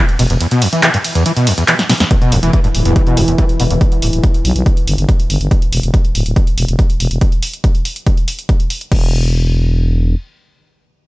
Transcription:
0.09 closed hi-hat
0.19 fm bass E1, acid bass B2, open hi-hat, ride
0.30 fm bass E1, acid bass E2, closed hi-hat
0.41 acid bass E2, closed hi-hat, ride
0.51 acid bass B2, closed hi-hat
0.62 acid bass E2, open hi-hat, ride
0.73 acid bass E3, closed hi-hat
0.83 acid bass E3, clap, closed hi-hat, ride
0.94 acid bass G2, closed hi-hat
1.04 open hi-hat, ride
1.15 acid bass E2, closed hi-hat
1.26 acid bass E3, closed hi-hat, ride
1.37 acid bass B2, closed hi-hat
1.47 acid bass E2, open hi-hat, ride
1.58 acid bass E2, closed hi-hat
1.68 acid bass E3, clap, closed hi-hat, ride
1.79 snare, closed hi-hat
1.90 acid bass B2, snare, open hi-hat, ride
2.00 acid bass E2, snare, closed hi-hat
2.11 acid bass E2, synth drone E3, kick, closed hi-hat
2.22 acid bass B2, closed hi-hat
2.32 fm bass E1, acid bass E2, open hi-hat
2.43 fm bass E1, acid bass E3, closed hi-hat
2.53 acid bass E3, kick, closed hi-hat
2.64 acid bass G2, closed hi-hat
2.75 fm bass D1, open hi-hat
2.85 fm bass D1, acid bass E2, closed hi-hat
2.96 acid bass E3, kick, closed hi-hat
3.07 acid bass B2, closed hi-hat
3.17 fm bass E1, acid bass E2, open hi-hat
3.28 fm bass E1, acid bass E2, closed hi-hat
3.38 acid bass E3, kick, closed hi-hat
3.49 closed hi-hat
3.60 fm bass E1, acid bass B2, open hi-hat
3.71 fm bass E1, acid bass E2, closed hi-hat
3.81 kick, closed hi-hat
3.92 closed hi-hat
4.02 fm bass D1, open hi-hat
4.13 fm bass D1, closed hi-hat
4.24 kick, closed hi-hat
4.34 closed hi-hat
4.45 fm bass B1, open hi-hat
4.56 fm bass B1, closed hi-hat
4.66 kick, closed hi-hat
4.77 closed hi-hat
4.87 fm bass G1, open hi-hat
4.98 fm bass G1, closed hi-hat
5.09 kick, closed hi-hat
5.20 closed hi-hat
5.30 fm bass G1, open hi-hat
5.41 fm bass G1, closed hi-hat
5.51 kick, closed hi-hat
5.62 closed hi-hat
5.72 fm bass E1, open hi-hat
5.83 fm bass E1, closed hi-hat
5.94 kick, closed hi-hat
6.05 closed hi-hat
6.15 fm bass D1, open hi-hat
6.26 fm bass D1, closed hi-hat
6.36 kick, closed hi-hat
6.47 closed hi-hat
6.58 fm bass E1, open hi-hat
6.68 fm bass E1, closed hi-hat
6.79 kick, closed hi-hat
6.90 closed hi-hat
7.00 fm bass E1, open hi-hat
7.11 fm bass E1, closed hi-hat
7.21 kick, closed hi-hat
7.32 closed hi-hat
7.43 open hi-hat
7.54 closed hi-hat
7.64 kick, closed hi-hat
7.75 closed hi-hat
7.85 open hi-hat
7.96 closed hi-hat
8.07 kick, closed hi-hat
8.17 closed hi-hat
8.28 open hi-hat
8.39 closed hi-hat
8.49 kick, closed hi-hat
8.60 closed hi-hat
8.70 open hi-hat
8.81 closed hi-hat
8.92 fm bass E1, kick, crash

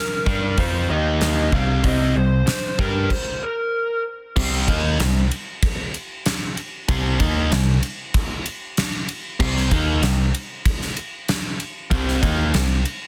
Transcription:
Already playing: lead electric guitar A#4
0.26 picked electric bass G2, distorted electric guitar G3 D4 G4, kick, snare
0.58 picked electric bass F2, distorted electric guitar F3 C4 F4, lead electric guitar C5, kick, open hi-hat
0.90 picked electric bass D#2, distorted electric guitar D#3 A#3 D#4, lead electric guitar D#5
1.21 snare, open hi-hat
1.52 picked electric bass C2, distorted electric guitar C3 G3 C4, lead electric guitar F5, kick
1.83 picked electric bass C2, distorted electric guitar C3 G3 C4, lead electric guitar D#5, kick, open hi-hat
2.15 picked electric bass C2, distorted electric guitar C3 G3, lead electric guitar C5
2.46 muted overdriven electric guitar stroke, muted distorted electric guitar stroke, muted picked electric bass stroke, snare, open hi-hat
2.79 picked electric bass G2, distorted electric guitar G3 D4 G4, lead electric guitar A#4, kick
3.10 lead electric guitar C5, kick, crash
3.43 lead electric guitar A#4
4.36 picked electric bass C2, distorted electric guitar C3 G3 C4, kick, crash
4.53 snare
4.67 picked electric bass D#2, distorted electric guitar D#3 A#3 D#4, kick, ride
4.99 picked electric bass C2, distorted electric guitar C3 G3, snare, ride
5.31 ride
5.63 kick, ride
5.94 ride
6.26 snare, ride
6.57 ride
6.89 picked electric bass C2, distorted electric guitar C3 G3 C4, kick, ride
7.20 picked electric bass D#2, distorted electric guitar D#3 A#3 D#4, kick, ride
7.51 picked electric bass C2, distorted electric guitar C3 G3, snare, ride
7.83 ride
8.14 kick, ride
8.46 ride
8.77 snare, ride
9.09 ride
9.40 picked electric bass C2, distorted electric guitar C3 G3 C4, kick, crash
9.57 snare
9.70 picked electric bass D#2, distorted electric guitar D#3 A#3 D#4, kick, ride
10.02 picked electric bass C2, distorted electric guitar C3 G3, snare, ride
10.35 ride
10.65 kick, ride
10.82 snare
10.97 ride
11.28 snare, ride
11.60 ride
11.91 picked electric bass C2, distorted electric guitar C3 G3 C4, kick, ride
12.08 snare
12.22 picked electric bass D#2, distorted electric guitar D#3 A#3 D#4, kick, ride
12.54 picked electric bass C2, distorted electric guitar C3 G3, snare, ride
12.85 ride

